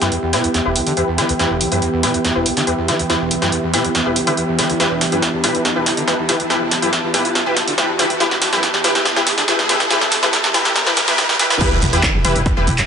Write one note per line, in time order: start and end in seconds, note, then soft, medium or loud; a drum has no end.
0.00 0.10 F#2 loud
0.00 11.65 E3 medium
0.00 11.61 B3 medium
0.00 11.65 B3 medium
0.00 0.12 E4 medium
0.00 11.61 G4 medium
0.00 0.12 G4 medium
0.00 0.12 B4 medium
0.00 11.61 E5 medium
0.00 5.22 G5 medium
0.00 snare soft
0.00 closed hi-hat medium
0.00 riser medium
0.12 0.18 E2 medium
0.12 closed hi-hat medium
0.23 0.35 E2 medium
0.33 0.42 B2 medium
0.33 0.51 E4 loud
0.33 0.51 G4 medium
0.33 0.51 B4 loud
0.33 snare medium
0.33 open hi-hat loud
0.44 0.48 E2 medium
0.44 closed hi-hat medium
0.54 0.60 E2 medium
0.54 snare medium
0.54 closed hi-hat medium
0.65 0.77 E1 loud
0.65 0.76 E4 medium
0.65 0.76 G4 medium
0.65 0.76 B4 medium
0.76 0.82 D2 loud
0.76 open hi-hat loud
0.87 0.92 D3 loud
0.87 open hi-hat medium
0.97 1.03 E2 medium
0.97 1.08 E4 medium
0.97 1.08 G4 medium
0.97 1.08 B4 medium
0.97 closed hi-hat medium
1.08 1.20 E2 medium
1.18 1.24 E3 loud
1.18 1.29 E4 medium
1.18 1.29 G4 medium
1.18 1.29 B4 loud
1.18 snare medium
1.18 open hi-hat loud
1.29 1.33 D2 loud
1.29 closed hi-hat medium
1.39 1.46 E2 medium
1.39 1.51 E4 medium
1.39 1.51 G4 medium
1.39 1.51 B4 loud
1.39 snare medium
1.39 closed hi-hat medium
1.50 1.62 E1 loud
1.61 1.67 D2 loud
1.61 open hi-hat loud
1.72 1.80 F#2 loud
1.72 1.82 E4 medium
1.72 1.82 G4 medium
1.72 1.82 B4 medium
1.72 closed hi-hat medium
1.82 1.88 E2 medium
1.82 closed hi-hat medium
1.93 2.05 E2 medium
2.03 2.12 B2 medium
2.03 2.21 E4 loud
2.03 2.21 G4 medium
2.03 2.21 B4 loud
2.03 snare medium
2.03 open hi-hat loud
2.14 2.18 E2 medium
2.14 closed hi-hat medium
2.25 2.31 E2 medium
2.25 snare medium
2.25 closed hi-hat medium
2.36 2.47 E1 loud
2.36 2.46 E4 medium
2.36 2.46 G4 medium
2.36 2.46 B4 medium
2.46 2.52 D2 loud
2.46 open hi-hat loud
2.57 2.63 D3 loud
2.57 snare medium
2.57 closed hi-hat medium
2.67 2.73 E2 medium
2.67 2.78 E4 medium
2.67 2.78 G4 medium
2.67 2.78 B4 medium
2.67 closed hi-hat medium
2.78 2.90 E2 medium
2.88 2.94 E3 loud
2.88 3.00 E4 medium
2.88 3.00 G4 medium
2.88 3.00 B4 loud
2.88 snare medium
2.88 open hi-hat loud
2.99 3.03 D2 loud
2.99 closed hi-hat medium
3.10 3.16 E2 medium
3.10 3.21 E4 loud
3.10 3.21 G4 medium
3.10 3.21 B4 loud
3.10 snare medium
3.10 closed hi-hat medium
3.21 3.33 E1 loud
3.31 3.37 D2 loud
3.31 open hi-hat loud
3.42 3.51 F#2 loud
3.42 3.52 E4 medium
3.42 3.52 G4 medium
3.42 3.52 B4 medium
3.42 snare medium
3.42 closed hi-hat medium
3.52 3.58 E2 medium
3.52 closed hi-hat medium
3.63 3.75 E2 medium
3.73 3.83 B2 medium
3.73 3.91 E4 loud
3.73 3.91 G4 medium
3.73 3.91 B4 loud
3.73 snare medium
3.73 open hi-hat loud
3.85 3.88 E2 medium
3.85 closed hi-hat medium
3.95 4.01 E2 medium
3.95 snare medium
3.95 closed hi-hat medium
4.06 4.18 E1 loud
4.06 4.16 E4 medium
4.06 4.16 G4 medium
4.06 4.16 B4 medium
4.16 4.22 D2 loud
4.16 open hi-hat loud
4.27 4.33 D3 loud
4.27 4.38 E4 loud
4.27 4.38 G4 medium
4.27 4.38 B4 loud
4.27 open hi-hat medium
4.37 4.43 E2 medium
4.37 closed hi-hat medium
4.48 4.60 E2 medium
4.59 4.65 E3 loud
4.59 4.76 E4 medium
4.59 4.76 G4 medium
4.59 4.76 B4 medium
4.59 snare medium
4.59 open hi-hat loud
4.70 4.73 D2 loud
4.70 closed hi-hat medium
4.80 4.86 E2 medium
4.80 4.91 E4 medium
4.80 4.91 G4 medium
4.80 4.91 B4 loud
4.80 snare medium
4.80 closed hi-hat medium
4.91 5.03 E1 loud
5.01 5.07 D2 loud
5.01 snare medium
5.01 open hi-hat loud
5.09 5.21 F#2 loud
5.09 5.23 E4 medium
5.09 5.23 G4 medium
5.09 5.23 B4 medium
5.09 11.61 A5 medium
5.09 closed hi-hat medium
5.22 5.29 E2 medium
5.22 snare medium
5.22 closed hi-hat medium
5.34 5.45 E2 medium
5.44 5.53 B2 medium
5.44 5.61 E4 loud
5.44 5.61 G4 medium
5.44 5.61 B4 loud
5.44 snare medium
5.44 open hi-hat loud
5.55 5.58 E2 medium
5.55 closed hi-hat medium
5.65 5.71 E2 medium
5.65 snare medium
5.65 closed hi-hat medium
5.76 5.88 E1 loud
5.76 5.86 E4 medium
5.76 5.86 G4 medium
5.76 5.86 B4 medium
5.86 5.92 D2 loud
5.86 snare medium
5.86 open hi-hat loud
5.97 6.03 D3 loud
5.97 closed hi-hat medium
6.08 6.14 E2 medium
6.08 6.19 E4 medium
6.08 6.19 G4 medium
6.08 6.19 B4 medium
6.08 snare medium
6.08 closed hi-hat medium
6.19 6.30 E2 medium
6.29 6.35 E3 loud
6.29 6.40 E4 medium
6.29 6.40 G4 medium
6.29 6.40 B4 loud
6.29 snare medium
6.29 open hi-hat loud
6.40 6.43 D2 loud
6.40 closed hi-hat medium
6.50 6.56 E2 medium
6.50 6.61 E4 medium
6.50 6.61 G4 medium
6.50 6.61 B4 loud
6.50 snare medium
6.50 closed hi-hat medium
6.61 6.73 E1 loud
6.71 6.77 D2 loud
6.71 snare medium
6.71 open hi-hat loud
6.82 6.91 F#2 loud
6.82 6.93 E4 medium
6.82 6.93 G4 medium
6.82 6.93 B4 medium
6.82 closed hi-hat medium
6.93 6.99 E2 medium
6.93 snare medium
6.93 closed hi-hat medium
7.04 7.15 E2 medium
7.14 7.23 B2 medium
7.14 7.31 E4 loud
7.14 7.31 G4 medium
7.14 7.31 B4 loud
7.14 snare medium
7.14 open hi-hat loud
7.25 7.28 E2 medium
7.25 closed hi-hat medium
7.35 7.41 E2 medium
7.35 snare medium
7.35 closed hi-hat medium
7.46 7.58 E1 loud
7.46 7.57 E4 medium
7.46 7.57 G4 medium
7.46 7.57 B4 medium
7.57 7.63 D2 loud
7.57 snare medium
7.57 open hi-hat loud
7.68 7.73 D3 loud
7.68 open hi-hat medium
7.78 7.84 E2 medium
7.78 7.89 E4 medium
7.78 7.89 G4 medium
7.78 7.89 B4 medium
7.78 snare medium
7.78 closed hi-hat medium
7.89 8.01 E2 medium
7.99 8.05 E3 loud
7.99 8.10 E4 medium
7.99 8.10 G4 medium
7.99 8.10 B4 loud
7.99 snare medium
7.99 open hi-hat loud
8.10 8.14 D2 loud
8.10 closed hi-hat medium
8.20 8.26 E2 medium
8.20 8.31 E4 medium
8.20 8.32 G4 medium
8.20 8.32 B4 loud
8.20 snare loud
8.20 closed hi-hat medium
8.31 8.43 E1 loud
8.31 snare medium
8.42 8.48 D2 loud
8.42 snare medium
8.42 open hi-hat loud
8.53 8.61 F#2 loud
8.53 8.63 E4 medium
8.53 8.63 G4 medium
8.53 8.63 B4 medium
8.53 snare medium
8.53 closed hi-hat medium
8.63 8.69 E2 medium
8.63 snare loud
8.63 closed hi-hat medium
8.74 8.86 E2 medium
8.74 snare medium
8.84 8.93 B2 medium
8.84 9.02 E4 loud
8.84 9.02 G4 medium
8.84 9.02 B4 loud
8.84 snare loud
8.84 open hi-hat loud
8.95 8.99 E2 medium
8.95 snare medium
8.95 closed hi-hat medium
9.05 9.12 E2 medium
9.05 snare loud
9.05 closed hi-hat medium
9.16 9.28 E1 loud
9.16 9.27 E4 medium
9.16 9.27 G4 medium
9.16 9.27 B4 medium
9.16 snare medium
9.27 9.33 D2 loud
9.27 snare loud
9.27 open hi-hat loud
9.38 9.43 D3 loud
9.38 snare medium
9.38 closed hi-hat medium
9.48 9.54 E2 medium
9.48 9.59 E4 medium
9.48 9.59 G4 medium
9.48 9.59 B4 medium
9.48 snare loud
9.48 closed hi-hat medium
9.59 9.71 E2 medium
9.59 snare medium
9.69 9.75 E3 loud
9.69 9.80 E4 medium
9.69 9.80 G4 medium
9.69 9.80 B4 loud
9.69 snare loud
9.69 open hi-hat loud
9.80 9.84 D2 loud
9.80 snare medium
9.80 closed hi-hat medium
9.90 9.97 E2 medium
9.90 10.02 E4 medium
9.90 10.02 G4 medium
9.90 10.02 B4 loud
9.90 snare loud
9.90 closed hi-hat medium
10.01 10.13 E1 loud
10.01 snare medium
10.12 10.18 D2 loud
10.12 snare loud
10.12 open hi-hat loud
10.23 10.31 F#2 loud
10.23 10.33 E4 medium
10.23 10.33 G4 medium
10.23 10.33 B4 medium
10.23 snare medium
10.23 closed hi-hat medium
10.33 10.39 E2 medium
10.33 snare loud
10.33 closed hi-hat medium
10.44 10.56 E2 medium
10.44 snare medium
10.54 10.63 B2 medium
10.54 10.72 E4 loud
10.54 10.72 G4 medium
10.54 10.72 B4 loud
10.54 snare loud
10.54 open hi-hat loud
10.65 10.69 E2 medium
10.65 snare medium
10.65 closed hi-hat medium
10.76 10.82 E2 medium
10.76 snare loud
10.76 closed hi-hat medium
10.87 10.92 E1 loud
10.87 10.97 E4 medium
10.87 10.97 G4 medium
10.87 10.97 B4 medium
10.87 snare medium
10.97 11.01 E2 loud
10.97 snare loud
10.97 open hi-hat loud
11.08 11.20 B2 loud
11.08 11.18 E4 loud
11.08 11.18 G4 medium
11.08 11.18 B4 loud
11.08 snare loud
11.08 open hi-hat medium
11.18 11.24 E3 medium
11.18 snare loud
11.18 closed hi-hat medium
11.29 11.35 E2 loud
11.29 snare loud
11.39 11.46 D2 loud
11.39 11.57 E4 medium
11.39 11.57 G4 medium
11.39 11.57 B4 medium
11.39 snare loud
11.39 open hi-hat loud
11.50 11.59 E2 medium
11.50 snare loud
11.50 closed hi-hat medium
11.61 11.67 E2 loud
11.61 11.72 E4 medium
11.61 11.72 G4 medium
11.61 11.72 B4 loud
11.61 kick loud
11.61 closed hi-hat medium
11.61 crash loud
11.61 sub drop medium
11.72 11.81 E1 medium
11.72 11.77 E2 medium
11.82 11.93 E1 loud
11.82 11.86 E2 loud
11.82 open hi-hat loud
11.93 12.05 E2 loud
11.93 12.04 E4 medium
11.93 12.04 G4 medium
11.93 12.03 B4 medium
11.93 closed hi-hat medium
12.03 12.16 E3 medium
12.03 kick loud
12.03 clap loud
12.03 closed hi-hat medium
12.14 12.24 E1 medium
12.14 12.20 D2 medium
12.25 12.35 E1 loud
12.25 12.37 E3 loud
12.25 12.42 E4 loud
12.25 12.42 G4 medium
12.25 12.42 B4 loud
12.25 open hi-hat loud
12.36 12.46 E1 medium
12.36 12.41 E2 loud
12.36 closed hi-hat medium
12.46 12.52 E2 loud
12.46 kick loud
12.46 closed hi-hat medium
12.57 12.67 E1 medium
12.57 12.65 E2 medium
12.57 12.67 E4 medium
12.57 12.67 G4 medium
12.57 12.67 B4 medium
12.67 12.78 E1 loud
12.67 12.71 E2 loud
12.67 open hi-hat loud
12.78 12.82 F#2 medium
12.78 clap soft
12.78 closed hi-hat medium